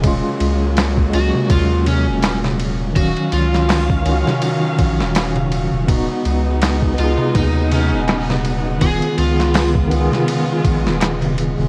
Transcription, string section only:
0.00 2.92 C#3 medium
0.00 2.93 F#3 medium
0.00 2.93 G#3 medium
0.00 2.93 A#3 medium
2.96 5.86 D#3 medium
2.96 5.86 F#3 medium
2.96 5.86 C#4 medium
2.96 5.86 F5 medium
5.88 11.69 C#3 medium
5.88 8.78 G#3 medium
5.88 11.69 B3 medium
5.88 8.78 D#4 medium
8.81 11.69 G#3 medium
8.81 11.69 F4 medium

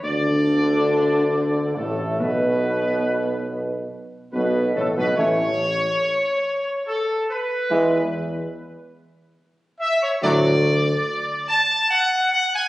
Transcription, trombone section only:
0.05 1.73 D3 medium
1.76 2.20 A2 medium
2.19 3.87 B2 medium
4.34 4.73 B2 medium
4.75 4.95 A2 medium
4.97 5.17 B2 medium
5.18 5.49 E3 medium
5.18 5.49 A3 medium
7.71 8.02 E3 medium
7.71 8.02 G#3 medium
10.23 10.54 A2 medium
10.23 10.54 F#3 medium

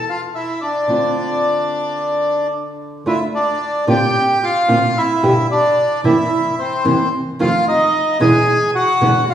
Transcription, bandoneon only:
0.09 0.21 F4 medium
0.09 0.21 F5 medium
0.35 0.60 E4 soft
0.35 0.62 E5 medium
0.61 2.47 D4 medium
0.61 2.47 D5 medium
3.07 3.19 E4 medium
3.07 3.20 E5 medium
3.34 3.84 D4 medium
3.34 3.85 D5 medium
3.89 4.39 G4 medium
3.89 4.45 G5 medium
4.43 4.93 F4 medium
4.43 4.98 F5 medium
4.98 5.47 E4 medium
4.98 5.47 E5 medium
5.52 6.01 D4 medium
5.52 6.01 D5 medium
6.05 6.55 E4 medium
6.05 6.60 E5 medium
6.59 7.09 C4 medium
6.59 7.09 C5 medium
7.41 7.65 F4 medium
7.41 7.65 F5 medium
7.68 8.17 D#4 medium
7.68 8.17 D#5 medium
8.21 8.71 G#4 medium
8.21 8.71 G#5 medium
8.75 9.25 F#4 medium
8.75 9.30 F#5 loud
9.29 9.34 F4 medium
9.29 9.34 F5 medium

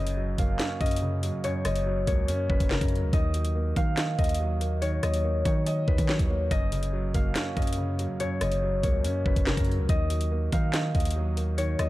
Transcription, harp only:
0.00 1.16 B4 medium
0.00 1.24 C#5 medium
0.00 0.80 D#5 loud
0.39 2.05 F5 medium
0.81 1.65 D#5 medium
1.44 2.07 C#5 loud
1.65 3.13 D#5 medium
2.07 3.98 C#5 medium
2.50 2.77 B4 medium
2.71 4.83 A#4 medium
3.13 4.18 D#5 loud
3.77 5.43 F5 medium
4.19 5.03 D#5 medium
4.82 5.45 C#5 loud
5.03 6.51 D#5 medium
5.45 6.08 C#5 medium
5.88 7.93 B4 medium
6.09 8.00 C#5 medium
6.51 7.56 D#5 loud
7.15 8.81 F5 medium
7.57 8.41 D#5 medium
8.20 8.83 C#5 loud
8.42 9.89 D#5 medium
8.83 10.74 C#5 medium
9.26 9.53 B4 medium
9.47 11.59 A#4 medium
9.89 10.94 D#5 loud
10.53 11.89 F5 loud
10.95 11.79 D#5 medium
11.58 11.89 C#5 loud
11.79 11.89 D#5 medium

